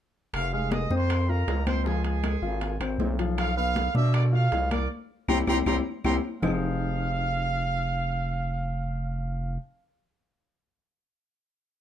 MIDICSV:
0, 0, Header, 1, 5, 480
1, 0, Start_track
1, 0, Key_signature, -4, "minor"
1, 0, Tempo, 380469
1, 429, Time_signature, 4, 2, 24, 8
1, 14889, End_track
2, 0, Start_track
2, 0, Title_t, "Trumpet section"
2, 0, Program_c, 0, 61
2, 432, Note_on_c, 0, 77, 101
2, 444, Note_off_c, 0, 77, 0
2, 444, Note_on_c, 0, 77, 85
2, 660, Note_off_c, 0, 77, 0
2, 665, Note_on_c, 0, 77, 95
2, 680, Note_off_c, 0, 77, 0
2, 680, Note_on_c, 0, 77, 70
2, 894, Note_on_c, 0, 75, 92
2, 898, Note_off_c, 0, 77, 0
2, 911, Note_on_c, 0, 87, 73
2, 1211, Note_on_c, 0, 72, 96
2, 1221, Note_off_c, 0, 75, 0
2, 1229, Note_off_c, 0, 87, 0
2, 1232, Note_on_c, 0, 84, 74
2, 1590, Note_off_c, 0, 72, 0
2, 1601, Note_off_c, 0, 84, 0
2, 1612, Note_on_c, 0, 70, 83
2, 1635, Note_on_c, 0, 82, 65
2, 2098, Note_on_c, 0, 72, 87
2, 2099, Note_off_c, 0, 70, 0
2, 2110, Note_off_c, 0, 82, 0
2, 2117, Note_on_c, 0, 84, 69
2, 2325, Note_off_c, 0, 72, 0
2, 2335, Note_off_c, 0, 84, 0
2, 2337, Note_on_c, 0, 68, 86
2, 2354, Note_on_c, 0, 80, 65
2, 2563, Note_off_c, 0, 68, 0
2, 2578, Note_on_c, 0, 68, 83
2, 2585, Note_off_c, 0, 80, 0
2, 2600, Note_on_c, 0, 80, 58
2, 3491, Note_off_c, 0, 68, 0
2, 3502, Note_off_c, 0, 80, 0
2, 4272, Note_on_c, 0, 77, 86
2, 4274, Note_off_c, 0, 77, 0
2, 4274, Note_on_c, 0, 77, 106
2, 4493, Note_off_c, 0, 77, 0
2, 4501, Note_on_c, 0, 77, 80
2, 4506, Note_off_c, 0, 77, 0
2, 4506, Note_on_c, 0, 77, 105
2, 4953, Note_off_c, 0, 77, 0
2, 4990, Note_on_c, 0, 76, 101
2, 4992, Note_on_c, 0, 88, 72
2, 5211, Note_off_c, 0, 76, 0
2, 5213, Note_off_c, 0, 88, 0
2, 5235, Note_on_c, 0, 74, 80
2, 5237, Note_on_c, 0, 86, 68
2, 5341, Note_off_c, 0, 74, 0
2, 5343, Note_off_c, 0, 86, 0
2, 5476, Note_on_c, 0, 77, 97
2, 5482, Note_off_c, 0, 77, 0
2, 5482, Note_on_c, 0, 77, 83
2, 5922, Note_off_c, 0, 77, 0
2, 5949, Note_on_c, 0, 74, 83
2, 5956, Note_on_c, 0, 86, 67
2, 6172, Note_off_c, 0, 74, 0
2, 6176, Note_off_c, 0, 86, 0
2, 6669, Note_on_c, 0, 84, 89
2, 6671, Note_on_c, 0, 79, 91
2, 6671, Note_on_c, 0, 82, 96
2, 6784, Note_off_c, 0, 84, 0
2, 6786, Note_off_c, 0, 79, 0
2, 6786, Note_off_c, 0, 82, 0
2, 6911, Note_on_c, 0, 84, 94
2, 6914, Note_on_c, 0, 82, 93
2, 6917, Note_on_c, 0, 79, 94
2, 7026, Note_off_c, 0, 84, 0
2, 7028, Note_off_c, 0, 82, 0
2, 7030, Note_off_c, 0, 79, 0
2, 7149, Note_on_c, 0, 84, 89
2, 7150, Note_on_c, 0, 82, 90
2, 7152, Note_on_c, 0, 79, 82
2, 7265, Note_off_c, 0, 82, 0
2, 7265, Note_off_c, 0, 84, 0
2, 7266, Note_off_c, 0, 79, 0
2, 7634, Note_on_c, 0, 79, 84
2, 7635, Note_on_c, 0, 84, 88
2, 7638, Note_on_c, 0, 82, 87
2, 7748, Note_off_c, 0, 79, 0
2, 7749, Note_off_c, 0, 84, 0
2, 7751, Note_off_c, 0, 82, 0
2, 8108, Note_on_c, 0, 77, 91
2, 12087, Note_off_c, 0, 77, 0
2, 14889, End_track
3, 0, Start_track
3, 0, Title_t, "Grand piano"
3, 0, Program_c, 1, 0
3, 670, Note_on_c, 1, 56, 67
3, 673, Note_on_c, 1, 68, 67
3, 1062, Note_off_c, 1, 56, 0
3, 1064, Note_off_c, 1, 68, 0
3, 1146, Note_on_c, 1, 60, 70
3, 1148, Note_on_c, 1, 72, 72
3, 1540, Note_off_c, 1, 60, 0
3, 1541, Note_off_c, 1, 72, 0
3, 1625, Note_on_c, 1, 65, 70
3, 1632, Note_on_c, 1, 77, 69
3, 2019, Note_off_c, 1, 65, 0
3, 2023, Note_off_c, 1, 77, 0
3, 2101, Note_on_c, 1, 60, 65
3, 2110, Note_on_c, 1, 72, 70
3, 2300, Note_off_c, 1, 60, 0
3, 2305, Note_off_c, 1, 72, 0
3, 2346, Note_on_c, 1, 53, 69
3, 2350, Note_on_c, 1, 65, 77
3, 2739, Note_off_c, 1, 53, 0
3, 2742, Note_off_c, 1, 65, 0
3, 2818, Note_on_c, 1, 56, 69
3, 2822, Note_on_c, 1, 68, 65
3, 3018, Note_off_c, 1, 56, 0
3, 3020, Note_off_c, 1, 68, 0
3, 3055, Note_on_c, 1, 65, 74
3, 3061, Note_on_c, 1, 77, 77
3, 3453, Note_off_c, 1, 65, 0
3, 3457, Note_off_c, 1, 77, 0
3, 3541, Note_on_c, 1, 60, 67
3, 3544, Note_on_c, 1, 72, 71
3, 3937, Note_off_c, 1, 60, 0
3, 3938, Note_off_c, 1, 72, 0
3, 4020, Note_on_c, 1, 53, 76
3, 4020, Note_on_c, 1, 65, 78
3, 4416, Note_off_c, 1, 53, 0
3, 4416, Note_off_c, 1, 65, 0
3, 4503, Note_on_c, 1, 59, 70
3, 4507, Note_on_c, 1, 71, 71
3, 4898, Note_off_c, 1, 59, 0
3, 4900, Note_off_c, 1, 71, 0
3, 4981, Note_on_c, 1, 62, 81
3, 4987, Note_on_c, 1, 74, 78
3, 5377, Note_off_c, 1, 62, 0
3, 5381, Note_off_c, 1, 74, 0
3, 5456, Note_on_c, 1, 65, 68
3, 5458, Note_on_c, 1, 77, 73
3, 5854, Note_off_c, 1, 65, 0
3, 5855, Note_off_c, 1, 77, 0
3, 5941, Note_on_c, 1, 58, 70
3, 5944, Note_on_c, 1, 70, 71
3, 6140, Note_off_c, 1, 58, 0
3, 6142, Note_off_c, 1, 70, 0
3, 6670, Note_on_c, 1, 60, 94
3, 6670, Note_on_c, 1, 64, 96
3, 6672, Note_on_c, 1, 67, 97
3, 6823, Note_off_c, 1, 60, 0
3, 6823, Note_off_c, 1, 64, 0
3, 6825, Note_off_c, 1, 67, 0
3, 6908, Note_on_c, 1, 64, 89
3, 6910, Note_on_c, 1, 60, 98
3, 6912, Note_on_c, 1, 67, 92
3, 7062, Note_off_c, 1, 64, 0
3, 7064, Note_off_c, 1, 60, 0
3, 7065, Note_off_c, 1, 67, 0
3, 7149, Note_on_c, 1, 60, 101
3, 7151, Note_on_c, 1, 64, 94
3, 7152, Note_on_c, 1, 67, 94
3, 7303, Note_off_c, 1, 60, 0
3, 7304, Note_off_c, 1, 64, 0
3, 7305, Note_off_c, 1, 67, 0
3, 7628, Note_on_c, 1, 60, 91
3, 7633, Note_on_c, 1, 64, 94
3, 7634, Note_on_c, 1, 67, 93
3, 7783, Note_off_c, 1, 60, 0
3, 7786, Note_off_c, 1, 64, 0
3, 7786, Note_off_c, 1, 67, 0
3, 8103, Note_on_c, 1, 60, 74
3, 8105, Note_on_c, 1, 63, 76
3, 8107, Note_on_c, 1, 53, 82
3, 8112, Note_on_c, 1, 65, 73
3, 8115, Note_on_c, 1, 68, 71
3, 8116, Note_on_c, 1, 72, 84
3, 12082, Note_off_c, 1, 60, 0
3, 12084, Note_off_c, 1, 63, 0
3, 12086, Note_off_c, 1, 53, 0
3, 12091, Note_off_c, 1, 65, 0
3, 12094, Note_off_c, 1, 68, 0
3, 12095, Note_off_c, 1, 72, 0
3, 14889, End_track
4, 0, Start_track
4, 0, Title_t, "FM bass"
4, 0, Program_c, 2, 39
4, 422, Note_on_c, 2, 29, 90
4, 1094, Note_off_c, 2, 29, 0
4, 1140, Note_on_c, 2, 41, 92
4, 1812, Note_off_c, 2, 41, 0
4, 1860, Note_on_c, 2, 37, 89
4, 2988, Note_off_c, 2, 37, 0
4, 3053, Note_on_c, 2, 32, 94
4, 3505, Note_off_c, 2, 32, 0
4, 3533, Note_on_c, 2, 32, 75
4, 3758, Note_off_c, 2, 32, 0
4, 3766, Note_on_c, 2, 35, 97
4, 4902, Note_off_c, 2, 35, 0
4, 4979, Note_on_c, 2, 47, 86
4, 5653, Note_off_c, 2, 47, 0
4, 5703, Note_on_c, 2, 36, 89
4, 6152, Note_off_c, 2, 36, 0
4, 6664, Note_on_c, 2, 36, 95
4, 6845, Note_off_c, 2, 36, 0
4, 6903, Note_on_c, 2, 36, 90
4, 7085, Note_off_c, 2, 36, 0
4, 7138, Note_on_c, 2, 36, 89
4, 7322, Note_off_c, 2, 36, 0
4, 7624, Note_on_c, 2, 36, 98
4, 7806, Note_off_c, 2, 36, 0
4, 8104, Note_on_c, 2, 29, 95
4, 12083, Note_off_c, 2, 29, 0
4, 14889, End_track
5, 0, Start_track
5, 0, Title_t, "Drums"
5, 424, Note_on_c, 9, 60, 65
5, 426, Note_on_c, 9, 65, 85
5, 430, Note_on_c, 9, 63, 32
5, 432, Note_on_c, 9, 75, 58
5, 550, Note_off_c, 9, 60, 0
5, 552, Note_off_c, 9, 65, 0
5, 556, Note_off_c, 9, 63, 0
5, 558, Note_off_c, 9, 75, 0
5, 667, Note_on_c, 9, 63, 32
5, 794, Note_off_c, 9, 63, 0
5, 903, Note_on_c, 9, 63, 91
5, 906, Note_on_c, 9, 65, 69
5, 906, Note_on_c, 9, 66, 56
5, 908, Note_on_c, 9, 60, 49
5, 1029, Note_off_c, 9, 63, 0
5, 1032, Note_off_c, 9, 65, 0
5, 1032, Note_off_c, 9, 66, 0
5, 1034, Note_off_c, 9, 60, 0
5, 1143, Note_on_c, 9, 63, 85
5, 1149, Note_on_c, 9, 60, 32
5, 1269, Note_off_c, 9, 63, 0
5, 1275, Note_off_c, 9, 60, 0
5, 1384, Note_on_c, 9, 75, 62
5, 1388, Note_on_c, 9, 60, 64
5, 1389, Note_on_c, 9, 65, 93
5, 1390, Note_on_c, 9, 63, 33
5, 1510, Note_off_c, 9, 75, 0
5, 1515, Note_off_c, 9, 60, 0
5, 1515, Note_off_c, 9, 65, 0
5, 1516, Note_off_c, 9, 63, 0
5, 1627, Note_on_c, 9, 63, 33
5, 1629, Note_on_c, 9, 60, 33
5, 1753, Note_off_c, 9, 63, 0
5, 1756, Note_off_c, 9, 60, 0
5, 1865, Note_on_c, 9, 63, 30
5, 1867, Note_on_c, 9, 65, 68
5, 1867, Note_on_c, 9, 66, 81
5, 1871, Note_on_c, 9, 60, 31
5, 1871, Note_on_c, 9, 61, 76
5, 1992, Note_off_c, 9, 63, 0
5, 1993, Note_off_c, 9, 65, 0
5, 1993, Note_off_c, 9, 66, 0
5, 1997, Note_off_c, 9, 60, 0
5, 1997, Note_off_c, 9, 61, 0
5, 2101, Note_on_c, 9, 63, 77
5, 2105, Note_on_c, 9, 65, 85
5, 2105, Note_on_c, 9, 75, 66
5, 2106, Note_on_c, 9, 60, 32
5, 2227, Note_off_c, 9, 63, 0
5, 2231, Note_off_c, 9, 65, 0
5, 2231, Note_off_c, 9, 75, 0
5, 2232, Note_off_c, 9, 60, 0
5, 2341, Note_on_c, 9, 63, 34
5, 2348, Note_on_c, 9, 60, 64
5, 2467, Note_off_c, 9, 63, 0
5, 2475, Note_off_c, 9, 60, 0
5, 2579, Note_on_c, 9, 65, 67
5, 2580, Note_on_c, 9, 63, 35
5, 2705, Note_off_c, 9, 65, 0
5, 2706, Note_off_c, 9, 63, 0
5, 2818, Note_on_c, 9, 75, 58
5, 2819, Note_on_c, 9, 63, 55
5, 2820, Note_on_c, 9, 60, 50
5, 2822, Note_on_c, 9, 65, 85
5, 2822, Note_on_c, 9, 66, 59
5, 2944, Note_off_c, 9, 75, 0
5, 2945, Note_off_c, 9, 63, 0
5, 2947, Note_off_c, 9, 60, 0
5, 2948, Note_off_c, 9, 65, 0
5, 2948, Note_off_c, 9, 66, 0
5, 3058, Note_on_c, 9, 60, 31
5, 3060, Note_on_c, 9, 63, 33
5, 3184, Note_off_c, 9, 60, 0
5, 3186, Note_off_c, 9, 63, 0
5, 3297, Note_on_c, 9, 65, 69
5, 3300, Note_on_c, 9, 60, 59
5, 3304, Note_on_c, 9, 63, 33
5, 3423, Note_off_c, 9, 65, 0
5, 3427, Note_off_c, 9, 60, 0
5, 3430, Note_off_c, 9, 63, 0
5, 3539, Note_on_c, 9, 75, 64
5, 3541, Note_on_c, 9, 60, 31
5, 3541, Note_on_c, 9, 65, 85
5, 3542, Note_on_c, 9, 63, 32
5, 3666, Note_off_c, 9, 75, 0
5, 3667, Note_off_c, 9, 60, 0
5, 3668, Note_off_c, 9, 63, 0
5, 3668, Note_off_c, 9, 65, 0
5, 3781, Note_on_c, 9, 60, 32
5, 3781, Note_on_c, 9, 61, 76
5, 3781, Note_on_c, 9, 63, 72
5, 3782, Note_on_c, 9, 66, 78
5, 3907, Note_off_c, 9, 60, 0
5, 3907, Note_off_c, 9, 61, 0
5, 3907, Note_off_c, 9, 63, 0
5, 3908, Note_off_c, 9, 66, 0
5, 4026, Note_on_c, 9, 60, 32
5, 4026, Note_on_c, 9, 65, 65
5, 4152, Note_off_c, 9, 60, 0
5, 4152, Note_off_c, 9, 65, 0
5, 4262, Note_on_c, 9, 75, 61
5, 4264, Note_on_c, 9, 63, 34
5, 4267, Note_on_c, 9, 65, 88
5, 4268, Note_on_c, 9, 60, 66
5, 4388, Note_off_c, 9, 75, 0
5, 4390, Note_off_c, 9, 63, 0
5, 4393, Note_off_c, 9, 65, 0
5, 4395, Note_off_c, 9, 60, 0
5, 4504, Note_on_c, 9, 63, 33
5, 4630, Note_off_c, 9, 63, 0
5, 4744, Note_on_c, 9, 63, 88
5, 4745, Note_on_c, 9, 65, 69
5, 4745, Note_on_c, 9, 66, 57
5, 4751, Note_on_c, 9, 60, 54
5, 4871, Note_off_c, 9, 63, 0
5, 4871, Note_off_c, 9, 65, 0
5, 4871, Note_off_c, 9, 66, 0
5, 4877, Note_off_c, 9, 60, 0
5, 4980, Note_on_c, 9, 63, 90
5, 4987, Note_on_c, 9, 60, 33
5, 5106, Note_off_c, 9, 63, 0
5, 5113, Note_off_c, 9, 60, 0
5, 5222, Note_on_c, 9, 65, 93
5, 5225, Note_on_c, 9, 75, 63
5, 5232, Note_on_c, 9, 60, 64
5, 5232, Note_on_c, 9, 63, 33
5, 5349, Note_off_c, 9, 65, 0
5, 5351, Note_off_c, 9, 75, 0
5, 5358, Note_off_c, 9, 60, 0
5, 5358, Note_off_c, 9, 63, 0
5, 5471, Note_on_c, 9, 60, 33
5, 5471, Note_on_c, 9, 63, 31
5, 5597, Note_off_c, 9, 60, 0
5, 5597, Note_off_c, 9, 63, 0
5, 5703, Note_on_c, 9, 65, 68
5, 5703, Note_on_c, 9, 66, 78
5, 5714, Note_on_c, 9, 63, 32
5, 5715, Note_on_c, 9, 60, 32
5, 5715, Note_on_c, 9, 61, 78
5, 5829, Note_off_c, 9, 65, 0
5, 5829, Note_off_c, 9, 66, 0
5, 5840, Note_off_c, 9, 63, 0
5, 5841, Note_off_c, 9, 60, 0
5, 5841, Note_off_c, 9, 61, 0
5, 5946, Note_on_c, 9, 65, 87
5, 5946, Note_on_c, 9, 75, 68
5, 5949, Note_on_c, 9, 63, 79
5, 5950, Note_on_c, 9, 60, 32
5, 6072, Note_off_c, 9, 65, 0
5, 6072, Note_off_c, 9, 75, 0
5, 6075, Note_off_c, 9, 63, 0
5, 6077, Note_off_c, 9, 60, 0
5, 6666, Note_on_c, 9, 61, 83
5, 6667, Note_on_c, 9, 63, 90
5, 6667, Note_on_c, 9, 75, 89
5, 6668, Note_on_c, 9, 65, 90
5, 6792, Note_off_c, 9, 61, 0
5, 6793, Note_off_c, 9, 63, 0
5, 6793, Note_off_c, 9, 75, 0
5, 6794, Note_off_c, 9, 65, 0
5, 6903, Note_on_c, 9, 61, 91
5, 6904, Note_on_c, 9, 63, 92
5, 6906, Note_on_c, 9, 75, 95
5, 6907, Note_on_c, 9, 65, 88
5, 7029, Note_off_c, 9, 61, 0
5, 7030, Note_off_c, 9, 63, 0
5, 7032, Note_off_c, 9, 75, 0
5, 7033, Note_off_c, 9, 65, 0
5, 7143, Note_on_c, 9, 61, 89
5, 7144, Note_on_c, 9, 63, 96
5, 7145, Note_on_c, 9, 75, 93
5, 7150, Note_on_c, 9, 65, 99
5, 7269, Note_off_c, 9, 61, 0
5, 7270, Note_off_c, 9, 63, 0
5, 7271, Note_off_c, 9, 75, 0
5, 7276, Note_off_c, 9, 65, 0
5, 7624, Note_on_c, 9, 61, 94
5, 7627, Note_on_c, 9, 75, 98
5, 7628, Note_on_c, 9, 63, 84
5, 7629, Note_on_c, 9, 65, 98
5, 7750, Note_off_c, 9, 61, 0
5, 7753, Note_off_c, 9, 75, 0
5, 7755, Note_off_c, 9, 63, 0
5, 7755, Note_off_c, 9, 65, 0
5, 8106, Note_on_c, 9, 64, 93
5, 8110, Note_on_c, 9, 61, 91
5, 8110, Note_on_c, 9, 66, 97
5, 8113, Note_on_c, 9, 75, 91
5, 8232, Note_off_c, 9, 64, 0
5, 8236, Note_off_c, 9, 61, 0
5, 8236, Note_off_c, 9, 66, 0
5, 8240, Note_off_c, 9, 75, 0
5, 14889, End_track
0, 0, End_of_file